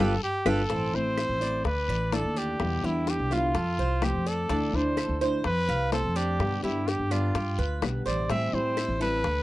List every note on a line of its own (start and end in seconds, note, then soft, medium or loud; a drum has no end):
0.00 0.16 G1 loud
0.00 0.14 G3 loud
0.00 0.14 B3 medium
0.00 0.14 D4 loud
0.00 0.14 F4 medium
0.00 0.14 G4 medium
0.00 0.19 A4 medium
0.00 0.14 B4 loud
0.23 0.49 G4 loud
0.45 0.63 G1 loud
0.45 0.61 G3 medium
0.45 0.61 B3 medium
0.45 0.61 D4 medium
0.45 0.61 F4 medium
0.45 0.61 G4 loud
0.45 0.97 A4 loud
0.45 0.61 B4 loud
0.45 high bongo loud
0.45 long guiro loud
0.45 claves loud
0.70 0.92 A1 medium
0.70 0.93 E3 medium
0.70 0.93 A3 medium
0.70 1.16 C4 medium
0.70 0.93 C4 medium
0.70 0.92 E4 medium
0.70 high bongo medium
0.70 long guiro medium
0.94 1.27 A1 medium
0.94 1.41 A3 medium
0.94 1.40 C4 medium
0.94 1.39 E4 medium
0.94 1.66 C5 loud
1.17 1.41 E4 medium
1.17 high bongo medium
1.17 short guiro medium
1.17 claves medium
1.29 1.63 A1 medium
1.40 1.64 A3 soft
1.40 1.64 C4 medium
1.40 1.64 E4 medium
1.40 1.88 D5 medium
1.40 short guiro medium
1.64 1.87 D2 medium
1.64 2.15 B4 medium
1.64 muted nylon-string guitar stroke medium
1.64 high bongo medium
1.64 long guiro medium
1.88 2.22 A1 medium
1.88 2.12 D5 medium
1.88 claves medium
2.12 2.59 D3 soft
2.12 2.59 A3 soft
2.12 2.60 D4 medium
2.12 2.60 E4 medium
2.12 2.39 A4 medium
2.12 2.36 D5 medium
2.12 high bongo medium
2.12 low bongo medium
2.12 short guiro medium
2.24 2.58 D#2 medium
2.37 2.82 D4 medium
2.37 2.87 G4 medium
2.37 short guiro medium
2.60 2.82 E2 medium
2.60 2.83 B2 medium
2.60 2.83 D3 medium
2.60 2.83 G3 medium
2.60 2.83 B3 medium
2.60 2.82 E4 medium
2.60 high bongo medium
2.60 long guiro medium
2.60 claves medium
2.83 3.17 E2 medium
2.83 3.31 D3 medium
2.83 3.31 G3 medium
2.83 3.31 B3 medium
2.83 3.30 E4 medium
2.83 3.11 E4 medium
2.83 3.30 G4 medium
2.83 high bongo soft
3.07 3.35 G4 medium
3.07 high bongo medium
3.07 short guiro medium
3.19 3.53 C2 medium
3.31 3.55 D3 medium
3.31 3.55 G3 medium
3.31 3.54 B3 medium
3.31 3.54 E4 medium
3.31 3.55 F4 medium
3.31 4.05 F4 medium
3.31 high bongo soft
3.31 short guiro medium
3.31 claves medium
3.54 3.77 F2 loud
3.54 3.78 A4 medium
3.54 muted nylon-string guitar stroke medium
3.54 high bongo medium
3.54 long guiro medium
3.79 4.13 C2 loud
3.79 4.25 C5 medium
4.02 4.49 F3 medium
4.02 4.50 A3 medium
4.02 4.50 C4 medium
4.02 4.50 F4 medium
4.02 4.29 G4 medium
4.02 high bongo medium
4.02 low bongo medium
4.02 short guiro medium
4.02 claves medium
4.14 4.48 F2 medium
4.26 4.77 A4 medium
4.26 4.49 D5 medium
4.26 high bongo soft
4.26 short guiro medium
4.50 4.72 D2 loud
4.50 4.73 D3 medium
4.50 4.73 A3 medium
4.50 4.96 D4 medium
4.50 4.73 D4 medium
4.50 4.72 E4 medium
4.50 high bongo medium
4.50 long guiro medium
4.73 5.07 D2 medium
4.73 5.21 A3 medium
4.73 5.21 D4 medium
4.73 5.20 E4 medium
4.73 5.19 C5 medium
4.97 5.20 A4 medium
4.97 high bongo medium
4.97 short guiro medium
4.97 claves medium
5.09 5.43 D2 medium
5.21 5.44 A3 medium
5.21 5.45 D4 medium
5.21 5.44 E4 medium
5.21 5.67 C5 medium
5.21 short guiro medium
5.44 5.67 F2 loud
5.44 5.90 B4 loud
5.44 muted nylon-string guitar stroke medium
5.44 high bongo medium
5.44 long guiro medium
5.69 6.02 C2 loud
5.69 5.92 F5 medium
5.69 claves medium
5.92 6.39 A3 medium
5.92 6.39 C4 medium
5.92 6.40 F4 medium
5.92 6.18 A4 medium
5.92 6.16 C5 medium
5.92 high bongo medium
5.92 low bongo medium
5.92 short guiro medium
6.04 6.38 F2 medium
6.16 6.62 D4 medium
6.16 6.63 G4 loud
6.16 short guiro medium
6.39 6.62 G2 medium
6.39 6.62 B2 medium
6.39 6.63 D3 medium
6.39 6.63 G3 medium
6.39 6.63 B3 medium
6.39 6.62 G4 medium
6.39 high bongo medium
6.39 long guiro medium
6.39 claves medium
6.63 6.97 G2 medium
6.63 7.11 D3 medium
6.63 7.11 G3 medium
6.63 7.10 B3 medium
6.63 6.89 E4 medium
6.63 7.10 G4 medium
6.63 high bongo soft
6.88 7.13 G4 medium
6.88 high bongo medium
6.88 short guiro medium
6.99 7.33 G2 medium
7.11 7.34 D3 medium
7.11 7.34 G3 medium
7.11 7.34 B3 medium
7.11 7.34 D4 medium
7.11 7.82 F4 medium
7.11 7.34 G4 medium
7.11 high bongo soft
7.11 short guiro medium
7.11 claves medium
7.35 7.57 G2 loud
7.35 7.58 G4 medium
7.35 muted nylon-string guitar stroke medium
7.35 high bongo medium
7.35 long guiro medium
7.58 7.81 D2 medium
7.58 8.04 B4 medium
7.82 8.03 B1 medium
7.82 8.29 D3 soft
7.82 8.29 G3 soft
7.82 8.29 B3 medium
7.82 8.30 G4 medium
7.82 high bongo medium
7.82 low bongo medium
7.82 short guiro medium
7.82 claves medium
8.06 8.27 A1 medium
8.06 8.29 C5 medium
8.06 8.28 D5 medium
8.06 high bongo soft
8.06 short guiro medium
8.29 8.52 A2 loud
8.29 8.52 E3 medium
8.29 8.53 G3 medium
8.29 8.76 C4 medium
8.29 8.53 C4 medium
8.29 8.52 E4 medium
8.29 8.56 E5 loud
8.29 high bongo medium
8.29 long guiro medium
8.53 8.87 A2 medium
8.53 9.01 G3 medium
8.53 9.00 C4 medium
8.53 8.99 E4 medium
8.53 9.01 C5 medium
8.77 9.00 E4 medium
8.77 high bongo medium
8.77 short guiro medium
8.77 claves medium
8.88 9.22 A1 medium
9.00 9.24 G3 medium
9.00 9.24 C4 medium
9.00 9.23 E4 medium
9.00 9.43 A4 medium
9.00 9.43 B4 loud
9.00 short guiro medium
9.24 9.43 D2 loud
9.24 muted nylon-string guitar stroke medium
9.24 high bongo medium
9.24 long guiro medium